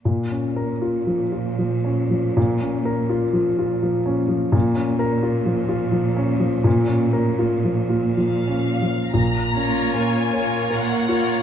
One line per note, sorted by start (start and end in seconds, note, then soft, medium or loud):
0.05 2.32 A#2 soft
0.05 4.50 A#2 soft
0.31 0.72 C#4 soft
0.56 0.97 A#4 soft
0.82 1.23 F4 soft
1.07 1.49 F3 soft
1.32 1.74 F4 soft
1.59 2.00 F3 soft
1.85 2.26 C#4 soft
2.10 2.51 F3 soft
2.37 4.50 A#2 soft
2.61 3.00 C#4 soft
2.85 3.24 A#4 soft
3.09 3.49 F4 soft
3.33 3.73 F3 soft
3.59 3.98 F4 soft
3.83 4.21 F3 soft
4.06 4.44 C#4 soft
4.28 4.53 F3 soft
4.52 6.60 A#2 medium
4.52 8.87 A#2 soft
4.75 5.13 C#4 soft
4.99 5.36 A#4 soft
5.23 5.60 F4 soft
5.46 5.83 F3 soft
5.69 6.07 F4 soft
5.92 6.31 F3 soft
6.17 6.55 C#4 soft
6.40 6.79 F3 soft
6.64 9.10 A#2 medium
6.88 7.28 C#4 soft
7.13 7.54 A#4 soft
7.39 7.80 F4 soft
7.65 8.07 F3 soft
7.89 8.36 F4 soft
8.17 8.69 F3 soft
8.17 9.11 F5 soft
8.48 9.02 C#4 soft
8.82 9.14 F3 soft
9.14 9.84 A#1 soft
9.14 11.43 A#2 soft
9.14 9.87 A#2 soft
9.14 9.96 A#5 medium
9.55 10.33 A#3 soft
9.55 10.19 C#4 soft
9.55 10.33 F4 soft
9.55 10.33 A#4 soft
9.55 10.33 C#5 soft
9.94 10.63 A#2 soft
9.94 10.56 A#4 soft
9.94 10.72 G#5 soft
10.33 11.08 A#3 soft
10.33 11.08 F4 soft
10.33 11.08 A#4 soft
10.33 10.94 C#5 soft
10.33 11.07 C#5 soft
10.70 11.39 A#2 soft
10.70 11.32 A#4 soft
10.70 11.43 F#5 soft
11.09 11.43 A#3 soft
11.09 11.43 F4 soft
11.09 11.43 A#4 soft
11.09 11.43 C#5 soft